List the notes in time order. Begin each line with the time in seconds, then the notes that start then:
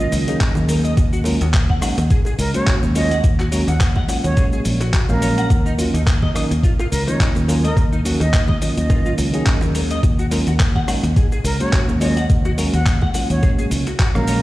Already playing: D#3 F#3 A#3 C#4 F4 D#5
0.12 C#2, open hi-hat, high bongo, shaker
0.27 D#3 F#3 A#3 C#4 D#4 G#4, closed hi-hat, shaker
0.41 D#4, kick, clap, closed hi-hat, shaker
0.55 D#2, high bongo, low conga, shaker
0.68 A#4, open hi-hat, high conga, shaker
0.84 D#5, closed hi-hat, high bongo, shaker
0.97 D#2, kick, closed hi-hat, shaker
1.13 F#4, shaker
1.24 F#3 G#3 A#3 C#4 F4 A#4, open hi-hat, high bongo, shaker
1.41 D#2 F#4, closed hi-hat, shaker
1.53 kick, clap, closed hi-hat, high bongo, shaker
1.69 F#5, kick, low conga
1.81 F#3 G#3 A#3 C#4 D#4 F#5, cross-stick, open hi-hat, shaker
1.98 D#2, closed hi-hat, high bongo, shaker
2.10 G#4, kick, closed hi-hat, shaker
2.25 G#4, high bongo, shaker
2.38 C#2 A#4, open hi-hat, shaker
2.54 F#3 G#3 A#3 C#4 F#4 C#5, closed hi-hat, high conga, shaker
2.67 F#4, kick, clap, closed hi-hat, high bongo, shaker
2.83 D#2, high conga, low conga, shaker
2.95 F#3 G#3 A#3 C#4 F4 C#5 D#5, open hi-hat, high bongo, shaker
3.11 F#5, closed hi-hat, high conga, shaker
3.24 D#2, kick, closed hi-hat, shaker
3.39 F#4, clap, high bongo, shaker
3.51 F#3 G#3 A#3 C#4 F#4 A#4, open hi-hat, shaker
3.67 D#2 F#4 F#5, closed hi-hat, high bongo, shaker
3.80 kick, clap, closed hi-hat, shaker
3.96 F#5, kick, high conga, low conga
4.08 F#3 G#3 A#3 C#4 F4 F#5, open hi-hat, high bongo, shaker
4.24 D#2 C#5, closed hi-hat, shaker
4.36 F#3 G#3 A#3 C#4 G#4, kick, closed hi-hat, high bongo, shaker
4.52 G#4, high conga, shaker
4.65 A#1, open hi-hat, shaker
4.80 F#4, closed hi-hat, high bongo, shaker
4.94 F#4, kick, clap, closed hi-hat, shaker
5.09 A#1 F#3 G#3 A#3 C#4 A#4 F5, high bongo, high conga, low conga, shaker
5.22 C#5, open hi-hat, high conga, shaker
5.38 F#5, closed hi-hat, shaker
5.50 D#2, kick, closed hi-hat, shaker
5.66 D#4, high bongo, shaker
5.78 D#3 F#3 A#3 C#4 F4 F#4, open hi-hat, shaker
5.94 D#2 D#4, closed hi-hat, shaker
6.06 kick, clap, closed hi-hat, high bongo, shaker
6.22 D#5, kick, low conga
6.35 D#3 F#3 A#3 C#4 D#4 D#5, cross-stick, open hi-hat, high bongo, shaker
6.51 D#2, closed hi-hat, shaker
6.63 F4, kick, closed hi-hat, shaker
6.79 F4, high bongo, shaker
6.91 C#2 A#4, open hi-hat, shaker
7.06 D#3 F#3 A#3 C#4 D#4 F4 C#5, closed hi-hat, high bongo, high conga, shaker
7.20 D#4, kick, clap, closed hi-hat, shaker
7.35 D#2, high conga, low conga, shaker
7.48 D#3 F#3 A#3 C#4 F4 A#4, open hi-hat, high bongo, shaker
7.64 A#4 D#5, closed hi-hat, high conga, shaker
7.77 D#2, kick, closed hi-hat, high bongo, shaker
7.93 D#4, shaker
8.05 D#3 F#3 A#3 C#4 F#4, open hi-hat, shaker
8.20 D#2 D#4 D#5, closed hi-hat, high bongo, shaker
8.33 kick, clap, closed hi-hat, shaker
8.48 D#5, kick, high bongo, high conga, low conga
8.61 D#3 F#3 A#3 C#4 F4 D#5, open hi-hat, shaker
8.77 D#2 D#5, closed hi-hat, shaker
8.89 D#3 F#3 A#3 C#4 F4, kick, closed hi-hat, high bongo, shaker
9.05 F4, high conga, shaker
9.18 C#2, open hi-hat, high bongo, shaker
9.33 D#3 F#3 A#3 C#4 D#4 G#4, closed hi-hat, shaker
9.46 D#4, kick, clap, closed hi-hat, shaker
9.61 D#2, high bongo, low conga, shaker
9.75 A#4, open hi-hat, high conga, shaker
9.90 D#5, closed hi-hat, high bongo, shaker
10.03 D#2, kick, closed hi-hat, shaker
10.19 F#4, shaker
10.31 F#3 G#3 A#3 C#4 F4 A#4, open hi-hat, high bongo, shaker
10.47 D#2 F#4, closed hi-hat, shaker
10.60 kick, clap, closed hi-hat, high bongo, shaker
10.75 F#5, kick, low conga
10.87 F#3 G#3 A#3 C#4 D#4 F#5, cross-stick, open hi-hat, shaker
11.03 D#2, closed hi-hat, high bongo, shaker
11.16 G#4, kick, closed hi-hat, shaker
11.32 G#4, high bongo, shaker
11.44 C#2 A#4, open hi-hat, shaker
11.60 F#3 G#3 A#3 C#4 F#4 C#5, closed hi-hat, high conga, shaker
11.72 F#4, kick, clap, closed hi-hat, high bongo, shaker
11.88 D#2, high conga, low conga, shaker
12.00 F#3 G#3 A#3 C#4 F4 C#5 D#5, open hi-hat, high bongo, shaker
12.17 F#5, closed hi-hat, high conga, shaker
12.30 D#2, kick, closed hi-hat, shaker
12.45 F#4, high bongo, shaker
12.57 F#3 G#3 A#3 C#4 F#4 A#4, open hi-hat, shaker
12.73 D#2 F#4 F#5, closed hi-hat, high bongo, shaker
12.86 kick, clap, closed hi-hat, shaker
13.02 F#5, kick, high conga, low conga
13.14 F#3 G#3 A#3 C#4 F4 F#5, open hi-hat, high bongo, shaker
13.30 D#2 C#5, closed hi-hat, shaker
13.42 F#3 G#3 A#3 C#4 G#4, kick, closed hi-hat, high bongo, shaker
13.59 G#4, high conga, shaker
13.71 C#2, open hi-hat, shaker
13.87 F#4, closed hi-hat, high bongo, shaker
13.99 F#4, kick, clap, closed hi-hat, shaker
14.15 A#1 F#3 G#3 A#3 C#4 A#4 F5, cross-stick, high bongo, high conga, low conga, shaker
14.28 C#5, open hi-hat, high conga, shaker